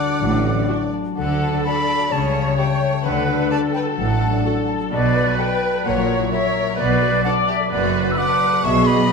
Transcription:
Already playing: D3 D4 A4 D5 F#5 A5 D6
0.09 F#4
0.20 A1 A2 F#3
0.33 D4
0.45 F#4
0.58 D5
0.69 D4 F#4 A5
0.81 F#5
0.93 A5
1.05 F#4
1.16 D2 D3 A4 F#5
1.29 D4
1.41 F#4
1.53 D5
1.64 D4 A4 D5 A5 B5
1.77 F#5
1.88 A5
2.00 F#4
2.11 C#2 C#3 C#5 A5
2.23 G3
2.34 A4
2.46 G4
2.57 G4 A4 C#5 E5 G5
2.69 A5
2.81 E5
2.93 A4
3.05 D2 D3 A4 B4 F#5
3.16 D4
3.28 F#4
3.39 D5
3.50 F#4 A4 D5 A5
3.61 F#5
3.73 B4 G5 A5
3.85 F#4
3.97 A1 A2 F#3 A4 F#5
4.09 D4
4.21 F#4
4.32 D5
4.44 F#4 A4 A5
4.56 F#5
4.68 A5
4.80 F#4
4.91 B1 B2 F#4 B4 D5
5.03 F#3
5.15 A4
5.26 F#4
5.38 F#4 A4 B4 D5 G5
5.50 A5
5.73 A4
5.85 A#1 A#2 A#4 C#5 F#5
5.97 F#3
6.08 F#4
6.20 E4
6.31 E4 F#4 A#4 C#5 E5
6.43 F#5
6.55 E5
6.66 F#4
6.77 B1 B2 F#4 B4 D5
6.89 F#3
7.01 A4
7.24 D4 F#4 A4 D5 F#5
7.36 A5
7.47 G4 D5 E5
7.59 A4
7.71 F#1 F#2 B3 F#4 B4 D5
7.82 F#3
7.94 A4
8.05 F#4
8.11 E6
8.17 D4 F#4 D5 F#5 D6
8.28 A5
8.40 D5
8.52 A4
8.63 B1 B2 G#4 E5 C#6
8.75 F#3
8.86 B4 D#5 B5
9.09 D#5

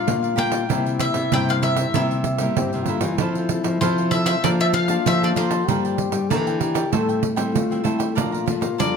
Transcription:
Already playing: G3 D4 F4 A#4 D5 F5
0.07 A#2 A#3, pandeiro
0.23 A#4 D5 F5, pandeiro
0.36 G3 A#3 D4 F4 G4 A#4 D5 F5 G5, pandeiro
0.51 A#4 D5 F5, pandeiro
0.69 C3 G3 A#3 E4 A#4 C5 E5, pandeiro
0.86 A#4 C5 E5, pandeiro
0.99 E5, muted cavaquinho stroke, pandeiro
1.14 C3, pandeiro
1.32 G2 C3 G3 A#3 E4 A#4 C5 E5 G5, pandeiro
1.49 A#4 C5 E5 F5, pandeiro
1.62 E4 A#4 C5 E5, pandeiro
1.76 A#4 C5 E5, pandeiro
1.94 C3 G3 A#3 E4 A#4 C5 E5, pandeiro
2.11 A#4 C5 E5, pandeiro
2.24 muted cavaquinho stroke, pandeiro
2.38 G3 A#3 E4 A#4 C5 E5, pandeiro
2.56 G2 C4 G4, pandeiro
2.73 C3 A#4 C5 E5, pandeiro
2.85 D3 G3 A#3 E4 F4 A#4 C5, pandeiro
2.89 E5
3.01 E3 A#4 C5 E5, pandeiro
3.18 F3 C4 E4 A4 C5 F5, pandeiro
3.35 A4 C5 F5, pandeiro
3.49 C4 E4 A4, muted cavaquinho stroke, pandeiro
3.64 F3, pandeiro
3.81 C3 F3 C4 E4 A4 C5 F5, pandeiro
3.98 A4 C5 F5, pandeiro
4.11 C4 E4 A4 C5 E5 F5, pandeiro
4.26 A4 C5 E5 F5, pandeiro
4.42 F3 A#3 D4 F4 A4 A#4 D5 F5, pandeiro
4.46 A5
4.60 D5 E5 F5 A5, pandeiro
4.73 F5, muted cavaquinho stroke, pandeiro
4.88 A#3 D4 A4 D5 F5 A5, pandeiro
5.06 F3 E5, pandeiro
5.22 A#3 D4 A4 D5 F5 A5, pandeiro
5.36 F3 A#3 D4 A4 A#4 C5 D5 F5 A5, pandeiro
5.50 D5 F5 A5, pandeiro
5.68 G2 F3 G3 A#3 D4 F4 G4 A#4 D5 G5, pandeiro
5.85 A#4 D5 G5, pandeiro
5.98 muted cavaquinho stroke, pandeiro
6.12 G3, pandeiro
6.29 D3 E3 A#3 D4 F4 A4 A#4 D5 G5, pandeiro
6.47 A#4 D5 G5, pandeiro
6.60 F4 G4 A#4 D5 G5, pandeiro
6.75 A#4 D5 G5, pandeiro
6.92 A2 G3 A3 C4 E4 A4 C5 E5 G5, pandeiro
7.09 C5 E5 G5, pandeiro
7.23 muted cavaquinho stroke, pandeiro
7.36 G3 C4 E4 C5 E5 G5, pandeiro
7.54 A3 F4, pandeiro
7.70 G3 C4 E4 C5 E5 G5, pandeiro
7.84 G3 A3 C4 E4 A4 C5 E5 G5, pandeiro
7.99 C5 E5 G5, pandeiro
8.11 E4
8.15 A#2 F3 A3 A#3 D4 F4 A4 D5 F5 A#5, pandeiro
8.32 D5 F5 A#5, pandeiro
8.46 F3 A3 D4, muted cavaquinho stroke, pandeiro
8.61 A#3, pandeiro
8.78 F2 F3 G3 A3 D4 A4 D5 F5 A#5, pandeiro

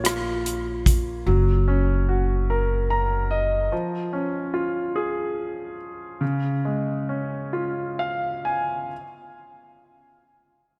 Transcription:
Already playing: A#1 A#3 F4 C#5
0.04 F4, cross-stick, closed hi-hat
0.46 closed hi-hat
0.86 kick, closed hi-hat
1.26 F#1 F#3
1.68 C#4
2.09 F#4
2.50 A#4
2.90 A#5
3.31 D#5
3.72 F3
4.13 C#4
4.54 F4
4.96 G#4
6.21 C#3
6.65 G#3
7.09 C#4
7.53 F4
7.99 F5
8.45 G#5

